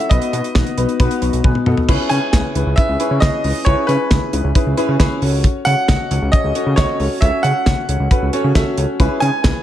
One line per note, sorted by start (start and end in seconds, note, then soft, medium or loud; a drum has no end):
0.00 0.11 E5 medium
0.00 closed hi-hat medium
0.09 0.19 B1 loud
0.09 0.31 B3 medium
0.09 0.31 D#4 medium
0.09 0.31 F#4 medium
0.09 0.31 B4 loud
0.09 1.39 D#5 medium
0.09 kick loud
0.09 closed hi-hat medium
0.22 closed hi-hat medium
0.33 0.41 B2 loud
0.33 0.53 B3 medium
0.33 0.53 D#4 medium
0.33 0.53 F#4 medium
0.33 0.53 B4 medium
0.33 closed hi-hat medium
0.44 closed hi-hat medium
0.55 0.64 B1 loud
0.55 0.75 B3 medium
0.55 0.75 D#4 medium
0.55 0.75 F#4 medium
0.55 0.75 B4 medium
0.55 kick loud
0.55 snare loud
0.67 closed hi-hat medium
0.77 0.86 B1 loud
0.77 0.97 B3 medium
0.77 0.97 D#4 medium
0.77 0.97 F#4 medium
0.77 0.97 B4 loud
0.77 closed hi-hat medium
0.89 closed hi-hat soft
1.00 1.08 B1 loud
1.00 1.19 B3 loud
1.00 1.19 D#4 loud
1.00 1.19 F#4 loud
1.00 1.19 B4 loud
1.00 kick loud
1.00 closed hi-hat medium
1.11 closed hi-hat medium
1.22 1.30 B1 loud
1.22 1.42 B3 medium
1.22 1.41 D#4 medium
1.22 1.41 F#4 medium
1.22 1.41 B4 loud
1.22 closed hi-hat medium
1.33 1.42 B1 loud
1.33 closed hi-hat medium
1.44 1.53 B1 loud
1.44 1.64 B3 medium
1.44 1.64 D#4 medium
1.44 1.64 F#4 medium
1.44 1.64 B4 loud
1.44 1.65 G#5 medium
1.44 kick loud
1.44 high tom medium
1.55 mid tom medium
1.66 1.75 B2 loud
1.66 1.86 B3 medium
1.66 1.86 D#4 medium
1.66 1.86 F#4 medium
1.66 1.86 A4 loud
1.66 1.87 F#5 medium
1.66 mid tom medium
1.77 floor tom medium
1.89 1.97 C#2 loud
1.89 2.08 C#4 loud
1.89 2.08 E4 loud
1.89 2.08 G#4 loud
1.89 2.08 B4 loud
1.89 kick loud
1.89 crash medium
2.09 2.19 C#3 loud
2.09 2.30 C#4 medium
2.09 2.30 E4 medium
2.09 2.30 G#4 medium
2.09 2.30 B4 medium
2.09 2.79 G#5 loud
2.09 closed hi-hat medium
2.33 2.42 C#2 loud
2.33 2.53 C#4 medium
2.33 2.53 E4 medium
2.33 2.53 G#4 medium
2.33 2.53 B4 medium
2.33 kick loud
2.33 snare loud
2.33 closed hi-hat medium
2.55 2.64 C#2 loud
2.55 2.75 C#4 medium
2.55 2.75 E4 medium
2.55 2.75 G#4 medium
2.55 2.75 B4 medium
2.55 closed hi-hat medium
2.66 2.75 C#2 loud
2.76 2.97 C#4 medium
2.76 2.97 E4 medium
2.76 2.97 G#4 medium
2.76 2.97 B4 medium
2.76 3.22 E5 loud
2.76 kick loud
2.76 closed hi-hat medium
2.89 2.97 C#2 loud
3.00 3.19 C#4 loud
3.00 3.19 E4 medium
3.00 3.19 G#4 medium
3.00 3.19 B4 loud
3.00 closed hi-hat medium
3.11 3.19 C#3 loud
3.20 3.31 C#2 loud
3.20 3.42 C#4 loud
3.20 3.42 E4 medium
3.20 3.42 G#4 medium
3.20 3.42 B4 loud
3.20 3.67 D#5 medium
3.20 kick loud
3.20 snare loud
3.20 closed hi-hat medium
3.44 3.53 C#2 loud
3.44 3.64 C#4 medium
3.44 3.64 E4 medium
3.44 3.64 G#4 medium
3.44 3.64 B4 medium
3.44 open hi-hat medium
3.65 3.75 C#2 loud
3.65 3.86 C#4 loud
3.65 3.86 E4 medium
3.65 3.86 G#4 medium
3.65 3.86 B4 loud
3.65 3.88 C#5 medium
3.65 kick loud
3.65 closed hi-hat medium
3.87 3.97 C#3 loud
3.87 4.08 C#4 medium
3.87 4.08 E4 medium
3.87 4.08 G#4 medium
3.87 4.73 B4 loud
3.87 4.08 B4 medium
3.87 closed hi-hat medium
4.11 4.19 C#2 loud
4.11 4.30 C#4 medium
4.11 4.30 E4 medium
4.11 4.30 G#4 medium
4.11 4.30 B4 medium
4.11 kick loud
4.11 snare loud
4.11 closed hi-hat medium
4.33 4.42 C#2 loud
4.33 4.53 C#4 medium
4.33 4.53 E4 medium
4.33 4.53 G#4 medium
4.33 4.53 B4 medium
4.33 closed hi-hat medium
4.44 4.53 C#2 loud
4.55 4.75 C#4 medium
4.55 4.75 E4 medium
4.55 4.75 G#4 medium
4.55 4.75 B4 loud
4.55 kick loud
4.55 closed hi-hat medium
4.66 4.75 C#2 loud
4.77 4.97 C#4 loud
4.77 4.97 E4 loud
4.77 4.97 G#4 loud
4.77 4.97 B4 loud
4.77 closed hi-hat medium
4.89 4.97 C#3 loud
5.00 5.08 C#2 loud
5.00 5.19 C#4 loud
5.00 5.19 E4 loud
5.00 5.19 G#4 loud
5.00 5.19 B4 loud
5.00 kick loud
5.00 snare loud
5.00 closed hi-hat medium
5.22 5.47 C#2 loud
5.22 5.61 C#4 medium
5.22 5.61 F#4 medium
5.22 5.61 A4 medium
5.22 5.61 C#5 loud
5.22 open hi-hat medium
5.44 kick loud
5.44 closed hi-hat medium
5.65 5.75 C#3 loud
5.65 5.86 C#4 medium
5.65 5.86 F#4 medium
5.65 5.86 A4 medium
5.65 5.86 C#5 medium
5.65 6.28 F#5 loud
5.65 closed hi-hat medium
5.88 5.97 C#2 loud
5.88 6.08 C#4 medium
5.88 6.08 F#4 medium
5.88 6.08 A4 medium
5.88 6.08 D#5 medium
5.88 kick loud
5.88 snare loud
5.88 closed hi-hat medium
6.11 6.19 C#2 loud
6.11 6.30 C#4 medium
6.11 6.30 F#4 medium
6.11 6.30 A4 medium
6.11 6.30 C#5 medium
6.11 closed hi-hat medium
6.22 6.30 C#2 loud
6.32 6.53 C#4 medium
6.32 6.53 F#4 medium
6.32 6.53 A4 medium
6.32 6.53 C#5 medium
6.32 6.78 D#5 loud
6.32 kick loud
6.32 closed hi-hat medium
6.44 6.53 C#2 loud
6.55 6.75 C#4 loud
6.55 6.75 F#4 medium
6.55 6.75 A4 medium
6.55 6.75 C#5 loud
6.55 closed hi-hat medium
6.66 6.75 C#3 loud
6.76 6.86 C#2 loud
6.76 6.97 C#4 loud
6.76 6.97 F#4 medium
6.76 6.97 A4 medium
6.76 7.23 C#5 medium
6.76 6.97 D#5 loud
6.76 kick loud
6.76 snare loud
6.76 closed hi-hat medium
7.00 7.08 C#2 loud
7.00 7.19 C#4 medium
7.00 7.19 F#4 medium
7.00 7.19 A4 medium
7.00 7.19 C#5 medium
7.00 open hi-hat medium
7.21 7.30 C#2 loud
7.21 7.42 C#4 loud
7.21 7.42 F#4 medium
7.21 7.42 A4 medium
7.21 7.42 C#5 loud
7.21 7.44 E5 loud
7.21 kick loud
7.21 closed hi-hat medium
7.43 7.53 C#3 loud
7.43 7.64 C#4 medium
7.43 7.64 F#4 medium
7.43 7.64 A4 medium
7.43 7.64 E5 medium
7.43 8.28 F#5 loud
7.43 closed hi-hat medium
7.66 7.75 C#2 loud
7.66 7.86 C#4 medium
7.66 7.86 F#4 medium
7.66 7.86 A4 medium
7.66 7.86 C#5 medium
7.66 kick loud
7.66 snare loud
7.66 closed hi-hat medium
7.89 7.97 C#2 loud
7.89 8.08 C#4 medium
7.89 8.08 F#4 medium
7.89 8.08 A4 medium
7.89 8.08 C#5 medium
7.89 closed hi-hat medium
8.00 8.08 C#2 loud
8.11 8.30 C#4 medium
8.11 8.30 F#4 medium
8.11 8.30 A4 medium
8.11 8.30 B4 loud
8.11 kick loud
8.11 closed hi-hat medium
8.22 8.30 C#2 medium
8.33 8.53 C#4 loud
8.33 8.53 F#4 loud
8.33 8.53 A4 loud
8.33 8.53 C#5 loud
8.33 closed hi-hat medium
8.44 8.53 C#3 loud
8.55 8.64 C#2 loud
8.55 8.75 C#4 loud
8.55 8.75 F#4 loud
8.55 8.75 A4 loud
8.55 8.75 E5 loud
8.55 kick loud
8.55 snare loud
8.55 closed hi-hat medium
8.78 8.86 C#2 loud
8.78 8.97 C#4 medium
8.78 8.97 F#4 medium
8.78 8.97 A4 medium
8.78 8.97 C#5 loud
8.78 closed hi-hat medium
9.00 9.08 C#2 loud
9.00 9.19 C#4 loud
9.00 9.19 E4 loud
9.00 9.19 G#4 loud
9.00 9.19 B4 loud
9.00 kick loud
9.00 closed hi-hat medium
9.20 9.30 C#3 loud
9.20 9.42 C#4 medium
9.20 9.42 C#5 medium
9.20 9.63 G#5 loud
9.20 closed hi-hat medium
9.44 9.53 C#2 loud
9.44 9.63 C#4 medium
9.44 9.63 E4 medium
9.44 9.63 G#4 medium
9.44 9.63 B4 medium
9.44 kick loud
9.44 snare loud
9.44 closed hi-hat medium